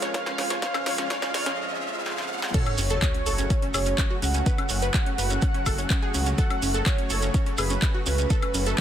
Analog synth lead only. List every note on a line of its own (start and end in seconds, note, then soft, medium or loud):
0.14 0.58 F5 loud
0.62 0.84 F5 loud
0.86 1.08 F5 loud
1.10 1.32 F5 loud
1.34 1.56 F5 loud
2.54 2.98 C#5 loud
3.02 3.65 C#5 loud
3.74 4.18 C#5 medium
4.22 6.29 F#5 loud
6.38 6.82 F#5 loud
6.86 7.49 C#5 loud
7.58 8.02 B4 medium
8.06 8.81 B4 loud